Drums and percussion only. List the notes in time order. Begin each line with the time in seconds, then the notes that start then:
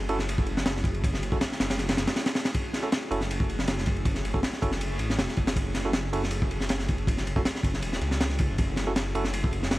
0.09 ride
0.19 snare
0.29 ride
0.38 kick
0.46 ride
0.57 snare
0.66 snare, ride
0.77 snare
0.84 kick, ride
0.94 ride
1.04 kick, ride
1.14 snare
1.23 ride
1.32 kick
1.41 snare, ride
1.52 snare
1.60 snare, ride
1.70 snare, ride
1.78 snare, ride
1.89 snare, ride
1.97 snare, ride
2.07 snare, ride
2.16 snare, ride
2.26 snare, ride
2.35 snare, ride
2.45 snare, ride
2.54 kick, ride
2.73 snare, ride
2.92 snare, ride
3.11 ride
3.21 snare
3.31 ride
3.40 kick
3.49 ride
3.59 snare
3.68 snare, ride
3.78 snare
3.86 kick, ride
3.96 ride
4.05 kick, ride
4.15 snare
4.25 ride
4.34 kick
4.43 snare, ride
4.53 snare
4.62 kick, ride
4.72 snare
4.81 ride
4.99 ride
5.10 snare
5.19 snare, ride
5.29 snare
5.37 kick, ride
5.47 snare, ride
5.56 kick, ride
5.75 snare, ride
5.93 snare, ride
6.13 ride
6.24 snare
6.31 ride
6.42 kick
6.51 ride
6.61 snare
6.69 snare, ride
6.79 snare
6.88 kick, ride
6.98 ride
7.07 kick, ride
7.17 snare
7.27 ride
7.36 kick
7.45 snare, ride
7.56 snare
7.63 kick, ride
7.74 snare
7.82 ride
7.93 snare
8.01 ride
8.11 snare
8.21 snare, ride
8.30 snare
8.39 kick, ride
8.58 kick, ride
8.76 snare, ride
8.96 snare, ride
9.15 ride
9.24 snare
9.33 ride
9.44 kick
9.53 ride
9.63 snare
9.71 snare, ride